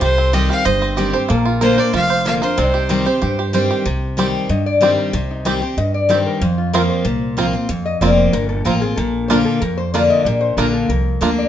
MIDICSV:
0, 0, Header, 1, 6, 480
1, 0, Start_track
1, 0, Tempo, 320000
1, 26, Time_signature, 4, 2, 24, 8
1, 17228, End_track
2, 0, Start_track
2, 0, Title_t, "Fiddle"
2, 0, Program_c, 0, 110
2, 33, Note_on_c, 0, 72, 106
2, 507, Note_on_c, 0, 75, 98
2, 530, Note_off_c, 0, 72, 0
2, 748, Note_off_c, 0, 75, 0
2, 757, Note_on_c, 0, 77, 96
2, 981, Note_on_c, 0, 75, 80
2, 1003, Note_off_c, 0, 77, 0
2, 1462, Note_off_c, 0, 75, 0
2, 2435, Note_on_c, 0, 72, 99
2, 2695, Note_on_c, 0, 74, 97
2, 2717, Note_off_c, 0, 72, 0
2, 2916, Note_off_c, 0, 74, 0
2, 2924, Note_on_c, 0, 77, 102
2, 3361, Note_off_c, 0, 77, 0
2, 3401, Note_on_c, 0, 77, 108
2, 3508, Note_off_c, 0, 77, 0
2, 3639, Note_on_c, 0, 72, 89
2, 5247, Note_off_c, 0, 72, 0
2, 17228, End_track
3, 0, Start_track
3, 0, Title_t, "Resonator guitar played with a steel bar"
3, 0, Program_c, 1, 25
3, 0, Note_on_c, 1, 69, 99
3, 1462, Note_off_c, 1, 69, 0
3, 1468, Note_on_c, 1, 67, 92
3, 1708, Note_on_c, 1, 69, 89
3, 1720, Note_off_c, 1, 67, 0
3, 1941, Note_off_c, 1, 69, 0
3, 1947, Note_on_c, 1, 70, 100
3, 3804, Note_off_c, 1, 70, 0
3, 3863, Note_on_c, 1, 63, 79
3, 4829, Note_on_c, 1, 67, 78
3, 4851, Note_off_c, 1, 63, 0
3, 5501, Note_off_c, 1, 67, 0
3, 6748, Note_on_c, 1, 75, 80
3, 6984, Note_off_c, 1, 75, 0
3, 6994, Note_on_c, 1, 74, 103
3, 7217, Note_off_c, 1, 74, 0
3, 7228, Note_on_c, 1, 72, 90
3, 7474, Note_off_c, 1, 72, 0
3, 7474, Note_on_c, 1, 70, 98
3, 7697, Note_off_c, 1, 70, 0
3, 7708, Note_on_c, 1, 72, 81
3, 7944, Note_off_c, 1, 72, 0
3, 7962, Note_on_c, 1, 63, 65
3, 8181, Note_off_c, 1, 63, 0
3, 8185, Note_on_c, 1, 67, 69
3, 8422, Note_off_c, 1, 67, 0
3, 8422, Note_on_c, 1, 72, 84
3, 8651, Note_off_c, 1, 72, 0
3, 8666, Note_on_c, 1, 75, 91
3, 8903, Note_off_c, 1, 75, 0
3, 8914, Note_on_c, 1, 74, 97
3, 9137, Note_off_c, 1, 74, 0
3, 9144, Note_on_c, 1, 72, 88
3, 9381, Note_off_c, 1, 72, 0
3, 9394, Note_on_c, 1, 70, 87
3, 9617, Note_off_c, 1, 70, 0
3, 9634, Note_on_c, 1, 72, 92
3, 9867, Note_off_c, 1, 72, 0
3, 9867, Note_on_c, 1, 65, 54
3, 10094, Note_off_c, 1, 65, 0
3, 10102, Note_on_c, 1, 70, 79
3, 10335, Note_off_c, 1, 70, 0
3, 10341, Note_on_c, 1, 72, 91
3, 11008, Note_off_c, 1, 72, 0
3, 11782, Note_on_c, 1, 75, 91
3, 12011, Note_off_c, 1, 75, 0
3, 12020, Note_on_c, 1, 74, 86
3, 12257, Note_off_c, 1, 74, 0
3, 12263, Note_on_c, 1, 72, 94
3, 12492, Note_off_c, 1, 72, 0
3, 12492, Note_on_c, 1, 70, 92
3, 12728, Note_off_c, 1, 70, 0
3, 12734, Note_on_c, 1, 69, 96
3, 12960, Note_off_c, 1, 69, 0
3, 12966, Note_on_c, 1, 70, 89
3, 13208, Note_off_c, 1, 70, 0
3, 13214, Note_on_c, 1, 68, 93
3, 13432, Note_off_c, 1, 68, 0
3, 13438, Note_on_c, 1, 69, 85
3, 13896, Note_off_c, 1, 69, 0
3, 13923, Note_on_c, 1, 72, 93
3, 14172, Note_off_c, 1, 72, 0
3, 14174, Note_on_c, 1, 69, 97
3, 14408, Note_off_c, 1, 69, 0
3, 14417, Note_on_c, 1, 70, 76
3, 14659, Note_off_c, 1, 70, 0
3, 14662, Note_on_c, 1, 72, 103
3, 14893, Note_off_c, 1, 72, 0
3, 14908, Note_on_c, 1, 74, 93
3, 15145, Note_off_c, 1, 74, 0
3, 15151, Note_on_c, 1, 75, 104
3, 15377, Note_off_c, 1, 75, 0
3, 15377, Note_on_c, 1, 74, 86
3, 15609, Note_on_c, 1, 72, 99
3, 15620, Note_off_c, 1, 74, 0
3, 15846, Note_off_c, 1, 72, 0
3, 15853, Note_on_c, 1, 70, 80
3, 16092, Note_off_c, 1, 70, 0
3, 16098, Note_on_c, 1, 69, 88
3, 16331, Note_off_c, 1, 69, 0
3, 16337, Note_on_c, 1, 70, 81
3, 17016, Note_off_c, 1, 70, 0
3, 17078, Note_on_c, 1, 74, 98
3, 17228, Note_off_c, 1, 74, 0
3, 17228, End_track
4, 0, Start_track
4, 0, Title_t, "Five-string banjo"
4, 0, Program_c, 2, 105
4, 0, Note_on_c, 2, 72, 52
4, 27, Note_on_c, 2, 67, 66
4, 272, Note_on_c, 2, 60, 63
4, 456, Note_off_c, 2, 72, 0
4, 483, Note_off_c, 2, 67, 0
4, 501, Note_on_c, 2, 67, 61
4, 732, Note_off_c, 2, 67, 0
4, 750, Note_on_c, 2, 67, 57
4, 938, Note_off_c, 2, 60, 0
4, 975, Note_on_c, 2, 72, 66
4, 1228, Note_on_c, 2, 60, 61
4, 1417, Note_off_c, 2, 67, 0
4, 1455, Note_on_c, 2, 67, 59
4, 1657, Note_off_c, 2, 72, 0
4, 1701, Note_on_c, 2, 72, 59
4, 1896, Note_off_c, 2, 60, 0
4, 1929, Note_on_c, 2, 58, 71
4, 1939, Note_off_c, 2, 72, 0
4, 1940, Note_off_c, 2, 67, 0
4, 2182, Note_on_c, 2, 65, 61
4, 2416, Note_on_c, 2, 70, 67
4, 2613, Note_off_c, 2, 58, 0
4, 2667, Note_on_c, 2, 72, 61
4, 2853, Note_off_c, 2, 65, 0
4, 2904, Note_on_c, 2, 65, 68
4, 3097, Note_off_c, 2, 70, 0
4, 3129, Note_off_c, 2, 72, 0
4, 3147, Note_on_c, 2, 72, 63
4, 3368, Note_off_c, 2, 65, 0
4, 3386, Note_on_c, 2, 65, 56
4, 3627, Note_on_c, 2, 70, 62
4, 3815, Note_off_c, 2, 72, 0
4, 3861, Note_off_c, 2, 70, 0
4, 3864, Note_off_c, 2, 65, 0
4, 3867, Note_on_c, 2, 60, 79
4, 4108, Note_on_c, 2, 67, 62
4, 4327, Note_off_c, 2, 60, 0
4, 4345, Note_on_c, 2, 60, 62
4, 4595, Note_on_c, 2, 72, 65
4, 4775, Note_off_c, 2, 67, 0
4, 4829, Note_on_c, 2, 67, 59
4, 5020, Note_off_c, 2, 60, 0
4, 5065, Note_off_c, 2, 67, 0
4, 5083, Note_on_c, 2, 67, 58
4, 5258, Note_off_c, 2, 72, 0
4, 5313, Note_on_c, 2, 72, 59
4, 5541, Note_off_c, 2, 67, 0
4, 5559, Note_on_c, 2, 67, 58
4, 5787, Note_off_c, 2, 67, 0
4, 5787, Note_off_c, 2, 72, 0
4, 6281, Note_on_c, 2, 60, 74
4, 6291, Note_on_c, 2, 67, 73
4, 6293, Note_off_c, 2, 67, 0
4, 6293, Note_on_c, 2, 67, 70
4, 6381, Note_off_c, 2, 60, 0
4, 6385, Note_off_c, 2, 67, 0
4, 7236, Note_on_c, 2, 60, 60
4, 7247, Note_on_c, 2, 67, 62
4, 7338, Note_off_c, 2, 60, 0
4, 7342, Note_off_c, 2, 67, 0
4, 8192, Note_on_c, 2, 60, 70
4, 8200, Note_on_c, 2, 67, 73
4, 8205, Note_off_c, 2, 67, 0
4, 8205, Note_on_c, 2, 67, 70
4, 8296, Note_off_c, 2, 60, 0
4, 8301, Note_off_c, 2, 67, 0
4, 9155, Note_on_c, 2, 60, 68
4, 9164, Note_on_c, 2, 67, 66
4, 9165, Note_off_c, 2, 67, 0
4, 9165, Note_on_c, 2, 67, 60
4, 9257, Note_off_c, 2, 60, 0
4, 9261, Note_off_c, 2, 67, 0
4, 10114, Note_on_c, 2, 60, 76
4, 10121, Note_on_c, 2, 65, 79
4, 10123, Note_on_c, 2, 70, 71
4, 10216, Note_off_c, 2, 60, 0
4, 10219, Note_off_c, 2, 65, 0
4, 10221, Note_off_c, 2, 70, 0
4, 11069, Note_on_c, 2, 60, 66
4, 11077, Note_on_c, 2, 65, 61
4, 11079, Note_on_c, 2, 70, 70
4, 11174, Note_off_c, 2, 60, 0
4, 11176, Note_off_c, 2, 65, 0
4, 11178, Note_off_c, 2, 70, 0
4, 12031, Note_on_c, 2, 60, 72
4, 12038, Note_on_c, 2, 65, 78
4, 12039, Note_on_c, 2, 70, 72
4, 12135, Note_off_c, 2, 60, 0
4, 12138, Note_off_c, 2, 65, 0
4, 12139, Note_off_c, 2, 70, 0
4, 12984, Note_on_c, 2, 60, 63
4, 12992, Note_on_c, 2, 65, 60
4, 12996, Note_on_c, 2, 70, 62
4, 13092, Note_off_c, 2, 60, 0
4, 13095, Note_off_c, 2, 65, 0
4, 13097, Note_off_c, 2, 70, 0
4, 13948, Note_on_c, 2, 62, 77
4, 13954, Note_on_c, 2, 65, 75
4, 13959, Note_on_c, 2, 70, 73
4, 14054, Note_off_c, 2, 62, 0
4, 14057, Note_off_c, 2, 65, 0
4, 14059, Note_off_c, 2, 70, 0
4, 14915, Note_on_c, 2, 62, 58
4, 14923, Note_on_c, 2, 70, 60
4, 14924, Note_on_c, 2, 65, 65
4, 15019, Note_off_c, 2, 62, 0
4, 15021, Note_off_c, 2, 65, 0
4, 15022, Note_off_c, 2, 70, 0
4, 15871, Note_on_c, 2, 62, 75
4, 15876, Note_on_c, 2, 65, 70
4, 15886, Note_on_c, 2, 70, 68
4, 15976, Note_off_c, 2, 62, 0
4, 15979, Note_off_c, 2, 65, 0
4, 15982, Note_off_c, 2, 70, 0
4, 16829, Note_on_c, 2, 62, 64
4, 16836, Note_on_c, 2, 65, 66
4, 16839, Note_on_c, 2, 70, 63
4, 16936, Note_off_c, 2, 62, 0
4, 16937, Note_off_c, 2, 65, 0
4, 16940, Note_off_c, 2, 70, 0
4, 17228, End_track
5, 0, Start_track
5, 0, Title_t, "Steel-string acoustic guitar"
5, 0, Program_c, 3, 25
5, 16, Note_on_c, 3, 48, 107
5, 497, Note_on_c, 3, 51, 90
5, 502, Note_on_c, 3, 55, 90
5, 508, Note_on_c, 3, 60, 97
5, 514, Note_on_c, 3, 67, 96
5, 934, Note_off_c, 3, 48, 0
5, 957, Note_off_c, 3, 51, 0
5, 960, Note_off_c, 3, 55, 0
5, 963, Note_off_c, 3, 60, 0
5, 966, Note_off_c, 3, 67, 0
5, 981, Note_on_c, 3, 43, 90
5, 1458, Note_on_c, 3, 51, 77
5, 1469, Note_on_c, 3, 55, 88
5, 1475, Note_on_c, 3, 60, 75
5, 1482, Note_on_c, 3, 67, 89
5, 1689, Note_off_c, 3, 67, 0
5, 1698, Note_off_c, 3, 51, 0
5, 1703, Note_off_c, 3, 55, 0
5, 1706, Note_off_c, 3, 60, 0
5, 1707, Note_on_c, 3, 67, 59
5, 1733, Note_on_c, 3, 60, 50
5, 1896, Note_off_c, 3, 43, 0
5, 1933, Note_off_c, 3, 67, 0
5, 1946, Note_off_c, 3, 60, 0
5, 1947, Note_on_c, 3, 46, 98
5, 2418, Note_on_c, 3, 50, 85
5, 2429, Note_on_c, 3, 58, 93
5, 2436, Note_on_c, 3, 62, 96
5, 2442, Note_on_c, 3, 65, 97
5, 2650, Note_off_c, 3, 65, 0
5, 2657, Note_off_c, 3, 50, 0
5, 2663, Note_off_c, 3, 58, 0
5, 2666, Note_off_c, 3, 62, 0
5, 2668, Note_on_c, 3, 65, 62
5, 2692, Note_on_c, 3, 62, 48
5, 2858, Note_off_c, 3, 46, 0
5, 2893, Note_off_c, 3, 65, 0
5, 2901, Note_on_c, 3, 41, 85
5, 2905, Note_off_c, 3, 62, 0
5, 3379, Note_on_c, 3, 50, 83
5, 3388, Note_on_c, 3, 58, 87
5, 3392, Note_on_c, 3, 62, 95
5, 3402, Note_on_c, 3, 65, 86
5, 3611, Note_off_c, 3, 65, 0
5, 3617, Note_off_c, 3, 50, 0
5, 3622, Note_off_c, 3, 58, 0
5, 3624, Note_off_c, 3, 62, 0
5, 3629, Note_on_c, 3, 65, 56
5, 3649, Note_on_c, 3, 62, 46
5, 3815, Note_off_c, 3, 41, 0
5, 3853, Note_off_c, 3, 65, 0
5, 3863, Note_off_c, 3, 62, 0
5, 3863, Note_on_c, 3, 48, 105
5, 4337, Note_on_c, 3, 51, 95
5, 4348, Note_on_c, 3, 55, 89
5, 4354, Note_on_c, 3, 60, 97
5, 4358, Note_on_c, 3, 67, 94
5, 4563, Note_off_c, 3, 67, 0
5, 4576, Note_off_c, 3, 51, 0
5, 4581, Note_on_c, 3, 67, 65
5, 4582, Note_off_c, 3, 55, 0
5, 4585, Note_off_c, 3, 60, 0
5, 4601, Note_on_c, 3, 60, 48
5, 4776, Note_off_c, 3, 48, 0
5, 4809, Note_off_c, 3, 67, 0
5, 4819, Note_off_c, 3, 60, 0
5, 4822, Note_on_c, 3, 43, 79
5, 5296, Note_on_c, 3, 51, 74
5, 5301, Note_on_c, 3, 55, 89
5, 5309, Note_on_c, 3, 60, 84
5, 5319, Note_on_c, 3, 67, 84
5, 5735, Note_off_c, 3, 43, 0
5, 5755, Note_off_c, 3, 51, 0
5, 5758, Note_off_c, 3, 55, 0
5, 5762, Note_off_c, 3, 60, 0
5, 5767, Note_off_c, 3, 67, 0
5, 5783, Note_on_c, 3, 48, 103
5, 6253, Note_on_c, 3, 51, 84
5, 6266, Note_on_c, 3, 55, 90
5, 6273, Note_on_c, 3, 60, 100
5, 6281, Note_on_c, 3, 67, 106
5, 6695, Note_off_c, 3, 48, 0
5, 6714, Note_off_c, 3, 51, 0
5, 6720, Note_off_c, 3, 55, 0
5, 6724, Note_off_c, 3, 60, 0
5, 6728, Note_off_c, 3, 67, 0
5, 6741, Note_on_c, 3, 43, 85
5, 7208, Note_on_c, 3, 51, 79
5, 7217, Note_on_c, 3, 55, 81
5, 7221, Note_on_c, 3, 60, 96
5, 7233, Note_on_c, 3, 67, 88
5, 7654, Note_off_c, 3, 43, 0
5, 7671, Note_off_c, 3, 51, 0
5, 7676, Note_off_c, 3, 55, 0
5, 7678, Note_off_c, 3, 60, 0
5, 7683, Note_off_c, 3, 67, 0
5, 7700, Note_on_c, 3, 48, 105
5, 8176, Note_on_c, 3, 51, 87
5, 8178, Note_on_c, 3, 55, 87
5, 8186, Note_on_c, 3, 60, 100
5, 8197, Note_on_c, 3, 67, 90
5, 8407, Note_off_c, 3, 67, 0
5, 8415, Note_off_c, 3, 51, 0
5, 8416, Note_off_c, 3, 55, 0
5, 8420, Note_off_c, 3, 60, 0
5, 8425, Note_on_c, 3, 67, 61
5, 8444, Note_on_c, 3, 60, 52
5, 8614, Note_off_c, 3, 48, 0
5, 8650, Note_off_c, 3, 67, 0
5, 8660, Note_off_c, 3, 60, 0
5, 8665, Note_on_c, 3, 43, 80
5, 9131, Note_on_c, 3, 51, 79
5, 9142, Note_on_c, 3, 55, 83
5, 9151, Note_on_c, 3, 60, 83
5, 9156, Note_on_c, 3, 67, 86
5, 9576, Note_off_c, 3, 43, 0
5, 9593, Note_off_c, 3, 51, 0
5, 9598, Note_off_c, 3, 55, 0
5, 9603, Note_off_c, 3, 60, 0
5, 9605, Note_off_c, 3, 67, 0
5, 9622, Note_on_c, 3, 41, 104
5, 10101, Note_on_c, 3, 53, 97
5, 10109, Note_on_c, 3, 58, 82
5, 10113, Note_on_c, 3, 60, 99
5, 10121, Note_on_c, 3, 65, 96
5, 10535, Note_off_c, 3, 41, 0
5, 10558, Note_off_c, 3, 53, 0
5, 10562, Note_off_c, 3, 58, 0
5, 10564, Note_off_c, 3, 60, 0
5, 10568, Note_off_c, 3, 65, 0
5, 10570, Note_on_c, 3, 46, 84
5, 11051, Note_on_c, 3, 53, 83
5, 11061, Note_on_c, 3, 58, 78
5, 11065, Note_on_c, 3, 60, 86
5, 11076, Note_on_c, 3, 65, 97
5, 11277, Note_off_c, 3, 65, 0
5, 11293, Note_off_c, 3, 53, 0
5, 11295, Note_on_c, 3, 65, 56
5, 11298, Note_off_c, 3, 58, 0
5, 11300, Note_off_c, 3, 60, 0
5, 11318, Note_on_c, 3, 60, 50
5, 11489, Note_off_c, 3, 46, 0
5, 11525, Note_off_c, 3, 65, 0
5, 11533, Note_on_c, 3, 41, 104
5, 11537, Note_off_c, 3, 60, 0
5, 12016, Note_on_c, 3, 53, 88
5, 12027, Note_on_c, 3, 58, 90
5, 12032, Note_on_c, 3, 60, 99
5, 12041, Note_on_c, 3, 65, 93
5, 12451, Note_off_c, 3, 41, 0
5, 12476, Note_off_c, 3, 53, 0
5, 12481, Note_off_c, 3, 58, 0
5, 12484, Note_off_c, 3, 60, 0
5, 12488, Note_off_c, 3, 65, 0
5, 12499, Note_on_c, 3, 46, 89
5, 12975, Note_on_c, 3, 53, 76
5, 12982, Note_on_c, 3, 58, 75
5, 12990, Note_on_c, 3, 60, 85
5, 12994, Note_on_c, 3, 65, 93
5, 13209, Note_off_c, 3, 65, 0
5, 13215, Note_off_c, 3, 53, 0
5, 13219, Note_off_c, 3, 58, 0
5, 13223, Note_off_c, 3, 60, 0
5, 13227, Note_on_c, 3, 65, 57
5, 13249, Note_on_c, 3, 60, 48
5, 13414, Note_off_c, 3, 46, 0
5, 13452, Note_off_c, 3, 65, 0
5, 13462, Note_on_c, 3, 46, 102
5, 13463, Note_off_c, 3, 60, 0
5, 13947, Note_on_c, 3, 50, 93
5, 13956, Note_on_c, 3, 58, 87
5, 13958, Note_on_c, 3, 62, 90
5, 13970, Note_on_c, 3, 65, 97
5, 14376, Note_off_c, 3, 46, 0
5, 14402, Note_off_c, 3, 50, 0
5, 14406, Note_off_c, 3, 58, 0
5, 14407, Note_off_c, 3, 62, 0
5, 14414, Note_off_c, 3, 65, 0
5, 14425, Note_on_c, 3, 41, 83
5, 14906, Note_on_c, 3, 50, 90
5, 14916, Note_on_c, 3, 58, 78
5, 14924, Note_on_c, 3, 62, 90
5, 14929, Note_on_c, 3, 65, 91
5, 15338, Note_off_c, 3, 41, 0
5, 15362, Note_off_c, 3, 50, 0
5, 15367, Note_off_c, 3, 58, 0
5, 15370, Note_off_c, 3, 62, 0
5, 15373, Note_off_c, 3, 65, 0
5, 15394, Note_on_c, 3, 46, 98
5, 15863, Note_on_c, 3, 50, 94
5, 15870, Note_on_c, 3, 58, 89
5, 15878, Note_on_c, 3, 62, 97
5, 15881, Note_on_c, 3, 65, 100
5, 16303, Note_off_c, 3, 46, 0
5, 16320, Note_off_c, 3, 50, 0
5, 16324, Note_off_c, 3, 58, 0
5, 16328, Note_off_c, 3, 62, 0
5, 16330, Note_off_c, 3, 65, 0
5, 16346, Note_on_c, 3, 41, 80
5, 16811, Note_on_c, 3, 50, 78
5, 16820, Note_on_c, 3, 58, 84
5, 16828, Note_on_c, 3, 62, 94
5, 16830, Note_on_c, 3, 65, 83
5, 17228, Note_off_c, 3, 41, 0
5, 17228, Note_off_c, 3, 50, 0
5, 17228, Note_off_c, 3, 58, 0
5, 17228, Note_off_c, 3, 62, 0
5, 17228, Note_off_c, 3, 65, 0
5, 17228, End_track
6, 0, Start_track
6, 0, Title_t, "Upright bass"
6, 0, Program_c, 4, 32
6, 19, Note_on_c, 4, 36, 94
6, 719, Note_off_c, 4, 36, 0
6, 986, Note_on_c, 4, 31, 89
6, 1683, Note_off_c, 4, 31, 0
6, 1953, Note_on_c, 4, 34, 95
6, 2647, Note_off_c, 4, 34, 0
6, 2908, Note_on_c, 4, 29, 83
6, 3604, Note_off_c, 4, 29, 0
6, 3872, Note_on_c, 4, 36, 96
6, 4566, Note_off_c, 4, 36, 0
6, 4837, Note_on_c, 4, 43, 93
6, 5529, Note_off_c, 4, 43, 0
6, 5787, Note_on_c, 4, 36, 91
6, 6483, Note_off_c, 4, 36, 0
6, 6739, Note_on_c, 4, 43, 83
6, 7438, Note_off_c, 4, 43, 0
6, 7697, Note_on_c, 4, 36, 95
6, 8396, Note_off_c, 4, 36, 0
6, 8660, Note_on_c, 4, 43, 84
6, 9358, Note_off_c, 4, 43, 0
6, 9619, Note_on_c, 4, 41, 87
6, 10318, Note_off_c, 4, 41, 0
6, 10578, Note_on_c, 4, 36, 83
6, 11277, Note_off_c, 4, 36, 0
6, 11538, Note_on_c, 4, 41, 90
6, 11888, Note_off_c, 4, 41, 0
6, 12015, Note_on_c, 4, 29, 95
6, 12426, Note_off_c, 4, 29, 0
6, 12501, Note_on_c, 4, 31, 89
6, 12910, Note_off_c, 4, 31, 0
6, 12984, Note_on_c, 4, 33, 86
6, 13391, Note_off_c, 4, 33, 0
6, 13463, Note_on_c, 4, 34, 93
6, 14162, Note_off_c, 4, 34, 0
6, 14424, Note_on_c, 4, 41, 92
6, 15122, Note_off_c, 4, 41, 0
6, 15379, Note_on_c, 4, 34, 100
6, 15730, Note_off_c, 4, 34, 0
6, 15853, Note_on_c, 4, 34, 87
6, 16266, Note_off_c, 4, 34, 0
6, 16334, Note_on_c, 4, 36, 84
6, 16747, Note_off_c, 4, 36, 0
6, 16815, Note_on_c, 4, 38, 90
6, 17227, Note_off_c, 4, 38, 0
6, 17228, End_track
0, 0, End_of_file